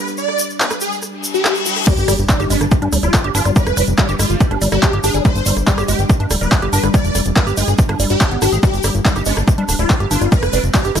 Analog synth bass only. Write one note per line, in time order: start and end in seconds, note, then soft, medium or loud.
1.97 2.04 G1 medium
2.08 2.14 G1 loud
2.19 2.25 G1 medium
2.40 2.46 G1 medium
2.50 2.57 G1 loud
2.61 2.67 G1 loud
2.82 2.88 G2 medium
2.93 2.99 D1 loud
3.03 3.09 D1 medium
3.24 3.31 G1 medium
3.35 3.41 G1 loud
3.45 3.52 G1 medium
3.67 3.73 F1 medium
3.77 3.83 F1 loud
3.88 3.94 F1 medium
4.09 4.15 G1 medium
4.19 4.26 G1 loud
4.30 4.36 G1 medium
4.51 4.57 G1 medium
4.62 4.68 G1 loud
4.72 4.78 G1 medium
4.93 5.00 G1 medium
5.04 5.10 G1 loud
5.14 5.21 G1 medium
5.36 5.42 G1 medium
5.46 5.52 G1 loud
5.57 5.63 G1 loud
5.78 5.84 G1 medium
5.88 5.95 G1 loud
5.99 6.05 G1 loud
6.20 6.26 G2 medium
6.31 6.37 D1 loud
6.41 6.47 D1 medium
6.62 6.69 G1 medium
6.73 6.79 G1 loud
6.83 6.90 G1 medium
7.05 7.11 F1 medium
7.15 7.21 F1 loud
7.26 7.32 F1 loud
7.47 7.53 G1 medium
7.57 7.64 G1 loud
7.68 7.74 G1 medium
7.89 7.95 G1 medium
8.00 8.06 G1 loud
8.10 8.16 G1 medium
8.31 8.38 G#1 medium
8.42 8.48 G#1 loud
8.52 8.59 G#1 medium
8.74 8.80 G1 medium
8.84 8.90 G1 loud
8.95 9.01 G1 medium
9.16 9.22 G1 medium
9.26 9.33 G1 loud
9.37 9.43 G1 loud
9.58 9.64 G2 medium
9.69 9.75 D1 loud
9.79 9.85 D1 medium
10.00 10.07 G1 medium
10.11 10.17 G1 loud
10.21 10.28 G1 medium
10.43 10.49 F1 medium
10.53 10.59 F1 loud
10.64 10.70 F1 medium
10.85 10.91 G1 medium
10.95 11.00 G1 loud